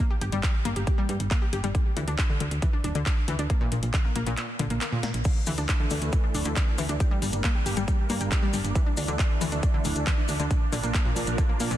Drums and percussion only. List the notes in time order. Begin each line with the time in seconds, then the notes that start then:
0.21 closed hi-hat
0.32 closed hi-hat
0.43 kick, clap, closed hi-hat
0.65 closed hi-hat
0.76 closed hi-hat
0.87 kick, closed hi-hat
1.09 closed hi-hat
1.20 closed hi-hat
1.31 kick, clap, closed hi-hat
1.53 closed hi-hat
1.64 closed hi-hat
1.75 kick, closed hi-hat
1.97 closed hi-hat
2.08 closed hi-hat
2.19 kick, clap, closed hi-hat
2.40 closed hi-hat
2.51 closed hi-hat
2.62 kick, closed hi-hat
2.84 closed hi-hat
2.95 closed hi-hat
3.06 kick, clap, closed hi-hat
3.28 closed hi-hat
3.39 closed hi-hat
3.50 kick, closed hi-hat
3.72 closed hi-hat
3.83 closed hi-hat
3.94 kick, clap, closed hi-hat
4.16 closed hi-hat
4.27 closed hi-hat
4.37 clap, closed hi-hat
4.59 closed hi-hat
4.70 closed hi-hat
4.81 clap, closed hi-hat
5.03 snare, closed hi-hat
5.14 closed hi-hat
5.24 kick, closed hi-hat, crash, cabasa
5.47 open hi-hat, cabasa
5.58 closed hi-hat, cabasa
5.69 kick, clap, closed hi-hat, cabasa
5.90 open hi-hat, cabasa
6.01 closed hi-hat, cabasa
6.12 kick, closed hi-hat, cabasa
6.35 open hi-hat, cabasa
6.45 closed hi-hat, cabasa
6.56 kick, clap, closed hi-hat, cabasa
6.78 open hi-hat, cabasa
6.89 closed hi-hat, cabasa
7.00 kick, closed hi-hat, cabasa
7.22 open hi-hat, cabasa
7.33 closed hi-hat, cabasa
7.44 kick, clap, closed hi-hat, cabasa
7.66 open hi-hat, cabasa
7.77 closed hi-hat, cabasa
7.88 kick, closed hi-hat, cabasa
8.10 open hi-hat, cabasa
8.21 closed hi-hat, cabasa
8.31 kick, clap, closed hi-hat, cabasa
8.53 open hi-hat, cabasa
8.65 closed hi-hat, cabasa
8.75 kick, closed hi-hat, cabasa
8.97 open hi-hat, cabasa
9.08 closed hi-hat, cabasa
9.19 kick, clap, closed hi-hat, cabasa
9.41 open hi-hat, cabasa
9.52 closed hi-hat, cabasa
9.63 kick, closed hi-hat, cabasa
9.85 open hi-hat, cabasa
9.96 closed hi-hat, cabasa
10.07 kick, clap, closed hi-hat, cabasa
10.28 open hi-hat, cabasa
10.39 closed hi-hat, cabasa
10.50 kick, closed hi-hat, cabasa
10.73 open hi-hat, cabasa
10.84 closed hi-hat, cabasa
10.94 kick, clap, closed hi-hat, cabasa
11.16 open hi-hat, cabasa
11.27 closed hi-hat, cabasa
11.38 kick, closed hi-hat, cabasa
11.60 open hi-hat, cabasa
11.71 closed hi-hat, cabasa